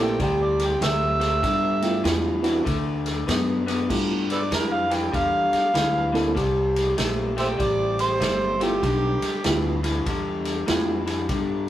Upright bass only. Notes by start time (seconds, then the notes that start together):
Already playing: A#1
0.20 D2
0.81 D2
1.43 G2
2.04 E2
2.66 D2
3.28 F#2
3.90 G2
4.51 F2
5.14 E2
5.52 muted upright bass stroke
5.74 D2
6.36 C2
6.99 A#1
7.60 A1
8.21 G1
8.83 B1
9.22 muted upright bass stroke
9.45 D2
10.06 E2
10.68 F2
11.29 G2